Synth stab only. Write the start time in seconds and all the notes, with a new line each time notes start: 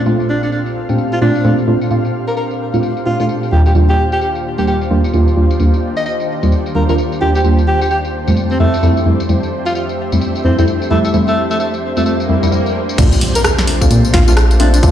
0.06 A#2 A3 C4 D4 F4
0.89 A#2 A3 C4 D4 G4
1.21 A#2 A3 C4 D4 F4
1.45 A#2 A3 C4 D4 F4
1.68 A#2 A3 C4 D4 F4
1.91 A#2 A3 C4 D4 F4
2.74 A#2 A3 C4 D4 F4
3.06 A#2 A3 C4 D4 F4
3.20 A#2 A3 C4 D4 F4
3.52 D#2 G3 A#3 D4 F4
3.75 D#2 G3 A#3 D4 F4
4.58 D#2 G3 A#3 D4 G4
4.91 D#2 G3 A#3 D4 F4
5.14 D#2 G3 A#3 D4 F4
5.37 D#2 G3 A#3 D4 F4
5.60 D#2 G3 A#3 D4 F4
6.43 D#2 G3 A#3 D4 F4
6.75 D#2 G3 A#3 D4 F4
6.89 D#2 G3 A#3 D4 F4
7.21 D#2 G3 A#3 D4 F4
7.44 D#2 G3 A#3 D4 F4
8.28 F2 G3 A3 C4 F4
8.60 F2 G3 A3 C4 E4
8.83 F2 G3 A3 C4 E4
9.06 F2 G3 A3 C4 E4
9.29 F2 G3 A3 C4 E4
10.12 F2 G3 A3 C4 E4
10.44 F2 G3 A3 C4 E4
10.58 F2 G3 A3 C4 E4
10.91 F2 G3 A3 C4 E4
11.14 F2 G3 A3 C4 E4
11.97 F2 G3 A3 C4 F4
12.29 F2 G3 A3 C4 E4
12.43 F2 G3 A3 C4 E4
12.52 F2 G3 A3 C4 E4
12.98 A3 C4 D4 F4
13.81 A3 C4 D4 F4
14.14 A3 C4 D4 F4
14.28 A3 C4 D4 F4
14.60 A3 C4 D4 F4
14.83 A3 C4 D4 F4